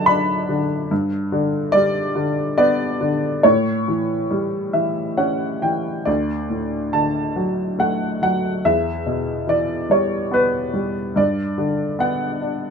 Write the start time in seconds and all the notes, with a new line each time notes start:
Already playing: F#2 D3 F#3 D5 F#5 A5
0.06 D4 B5
0.49 D3
0.91 G2
1.32 D3
1.72 G3 D5
2.15 D3
2.58 B3 D5
3.01 D3
3.43 A2 C#5
3.88 E3
4.31 G3
4.73 E3 E5
5.17 C#4 F#5
5.62 E3 G5
6.05 D2 D5
6.50 A2
6.93 D3 A5
7.36 F#3
7.79 A3 F#5
8.22 F#3 F#5
8.65 E2 E5
9.06 B2
9.47 E3 D5
9.90 G3 C#5
10.32 B3 B4
10.74 G3
11.16 G2 D5
11.58 D3
11.99 B3 F#5
12.41 D4